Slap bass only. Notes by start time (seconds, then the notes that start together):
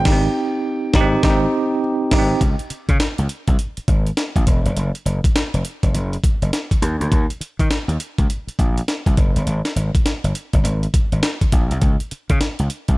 0.05 G#1
0.94 G#1
1.23 G#1
2.12 G#1
2.41 C#2
2.70 muted slap bass stroke
2.89 C#3
3.00 muted slap bass stroke
3.18 C#2
3.48 C2
3.77 muted slap bass stroke
3.88 G#1
4.36 A#1
4.47 E1
4.65 F1
4.76 F#1
5.05 F#1
5.54 F1
5.83 F1
5.94 F#1
6.42 F#1
6.82 D#2
7.00 D2
7.12 D#2
7.41 muted slap bass stroke
7.60 D#3
7.70 muted slap bass stroke
7.88 D#2
8.18 C#2
8.47 muted slap bass stroke
8.59 A#1
9.06 C2
9.17 F#1
9.36 G1
9.46 G#1
9.76 G#1
10.24 G1
10.54 G1
10.63 G#1
11.12 G#1
11.53 A#1
11.71 C2
11.82 C#2
12.12 muted slap bass stroke
12.30 C#3
12.41 muted slap bass stroke
12.59 C#2
12.89 C2